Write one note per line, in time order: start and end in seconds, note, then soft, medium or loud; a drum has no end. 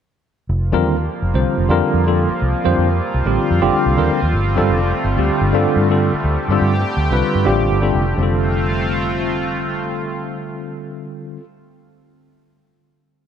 0.48 0.74 F1 medium
0.48 4.30 F3 medium
0.48 8.13 G3 medium
0.48 4.30 A#3 medium
0.48 8.13 C4 medium
0.48 6.21 F4 medium
0.72 0.85 F2 medium
0.72 0.95 D3 medium
0.72 0.95 G3 medium
0.72 0.95 C4 medium
0.72 0.95 F4 medium
0.72 0.96 A#4 loud
0.85 1.07 D#2 medium
0.97 1.03 F4 soft
0.97 1.04 A4 soft
1.22 1.33 F1 medium
1.34 1.44 C2 medium
1.34 1.66 D3 medium
1.34 1.66 G3 medium
1.34 1.67 C4 medium
1.34 1.67 F4 medium
1.34 1.67 C5 medium
1.58 1.68 F1 medium
1.69 1.80 F2 medium
1.69 2.02 D3 loud
1.69 2.02 G3 medium
1.69 2.03 C4 medium
1.69 2.03 F4 medium
1.69 2.03 A#4 loud
1.94 2.26 F2 medium
2.06 2.28 D3 medium
2.06 2.28 G3 medium
2.06 2.28 C4 medium
2.06 2.28 F4 medium
2.06 2.29 A4 medium
2.29 2.35 F4 soft
2.29 2.36 A#4 soft
2.29 muted fingered electric bass stroke soft
2.42 2.53 C2 medium
2.64 2.77 F2 medium
2.64 2.87 D3 medium
2.64 2.87 G3 medium
2.64 2.87 C4 medium
2.64 2.87 F4 medium
2.64 2.88 C5 loud
2.78 2.99 F2 medium
2.90 2.96 F4 soft
2.90 2.96 A#4 soft
3.14 3.25 C2 medium
3.25 3.36 A1 medium
3.25 3.58 D3 medium
3.25 3.58 G3 medium
3.25 3.59 C4 medium
3.25 3.59 F4 medium
3.25 3.59 G4 medium
3.51 3.61 F2 medium
3.61 3.73 F1 medium
3.61 3.95 D3 loud
3.61 3.95 G3 medium
3.61 3.95 C4 medium
3.61 3.95 F4 medium
3.61 3.95 G4 loud
3.86 3.97 C2 medium
3.97 4.08 D#2 medium
3.97 4.19 D3 medium
3.97 4.19 G3 medium
3.97 4.20 C4 medium
3.97 4.19 F4 medium
3.97 4.20 A#4 medium
4.10 muted fingered electric bass stroke soft
4.20 4.33 D#2 medium
4.20 4.27 F4 soft
4.20 4.28 A#4 soft
4.33 4.58 G1 loud
4.33 8.14 D3 medium
4.33 8.14 A3 medium
4.56 4.71 G2 medium
4.56 4.79 D3 loud
4.56 4.79 G3 medium
4.56 4.79 C4 medium
4.56 4.79 F4 medium
4.56 4.80 A4 loud
4.70 4.91 F1 medium
4.80 4.87 F4 soft
4.80 4.88 A4 soft
5.04 5.16 G1 medium
5.17 5.28 D2 medium
5.17 5.50 D3 medium
5.17 5.50 G3 medium
5.17 5.51 C4 medium
5.17 5.51 F4 medium
5.17 5.51 G4 medium
5.30 muted fingered electric bass stroke soft
5.41 5.52 G1 medium
5.53 5.65 G2 medium
5.53 5.86 D3 loud
5.53 5.86 G3 medium
5.53 5.87 C4 medium
5.53 5.87 F4 medium
5.53 5.87 A4 loud
5.76 6.09 G2 medium
5.89 6.11 D3 medium
5.89 6.12 G3 medium
5.89 6.12 C4 medium
5.89 6.12 F4 medium
5.89 6.13 A4 medium
6.13 6.20 F4 soft
6.13 6.21 A4 soft
6.13 muted fingered electric bass stroke soft
6.24 6.36 D2 medium
6.24 8.16 G4 medium
6.48 6.60 G2 medium
6.48 6.72 D3 loud
6.48 6.72 G3 medium
6.48 6.72 C4 medium
6.48 6.73 F4 medium
6.48 6.73 A4 loud
6.61 6.83 G2 medium
6.77 6.82 B4 soft
6.97 7.08 D2 medium
7.11 7.21 C2 medium
7.11 7.43 D3 medium
7.11 7.43 G3 medium
7.11 7.43 C4 medium
7.11 7.44 F4 medium
7.11 7.44 B4 medium
7.35 7.45 G2 medium
7.45 7.68 A1 medium
7.45 7.78 D3 loud
7.45 7.78 G3 medium
7.45 7.79 C4 medium
7.45 7.79 F4 medium
7.45 7.79 G4 loud
7.71 7.92 G1 medium
7.81 8.03 D3 medium
7.81 8.04 G3 medium
7.81 8.04 C4 medium
7.81 8.04 F4 medium
7.81 8.04 A4 medium
7.95 8.16 F1 medium
8.07 8.12 F4 soft
8.07 8.13 A4 soft
8.15 11.39 F1 medium
8.15 11.36 D3 medium
8.15 11.37 G3 medium
8.15 11.40 C4 medium
8.19 11.40 A3 medium
8.19 11.40 C4 medium
8.19 11.40 F4 medium
8.19 11.42 F4 medium
8.19 11.44 A4 medium